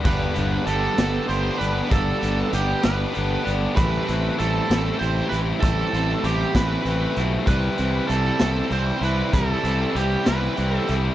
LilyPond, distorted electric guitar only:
\new Staff \with { instrumentName = "Distorted electric guitar" } { \time 6/8 \key g \major \tempo 4. = 65 <g, d g b d' g'>8 <g b d' g'>8 <g b d' g'>8 <g b d' g'>8 <g b d' g'>8 <g b d' g'>8 | <g, d g b d' g'>8 <g b d' g'>8 <g b d' g'>8 <g b d' g'>8 <g b d' g'>8 <g b d' g'>8 | <a, e a c' e'>8 <a c' e'>8 <e a c' e'>8 <a c' e'>8 <e a c' e'>8 <a c' e'>8 | <a, e a c' e'>8 <a c' e'>8 <e a c' e'>8 <a c' e'>8 <e a c' e'>8 <a c' e'>8 |
<c e g c' e'>8 <g c' e'>8 <e g c' e'>8 <g c' e'>8 <e g c' e'>8 <g c' e'>8 | <c e g c' e'>8 <g c' e'>8 <e g c' e'>8 <g c' e'>8 <e g c' e'>8 <g c' e'>8 | }